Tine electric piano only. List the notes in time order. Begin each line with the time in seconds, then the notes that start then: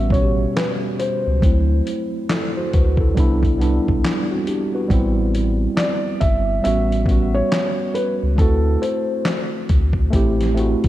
Already playing: G3 B3 C#4 F#4
0.10 B2 G3 C#4
0.16 F#4
0.22 G4
1.41 F#3 A3 C4
1.46 E4
2.30 E4 A4
2.57 F#4 C5
2.74 F#4 B4
3.00 E4 A4
3.14 G3 B3 D4
3.20 E4
3.58 G3 B3 D4
3.63 E4
4.31 C4 F#4
4.48 D4 G4
4.75 F#4 B4
4.88 G3 B3 C4
4.93 E4
6.62 G3 B3 C#4
6.67 F#4
7.06 G3 B3 C#4
7.11 F#4
8.37 A3 C4 E4
8.42 F#4
10.10 A3 C4 E4
10.15 G4
10.54 A3 C4 E4
10.59 F#4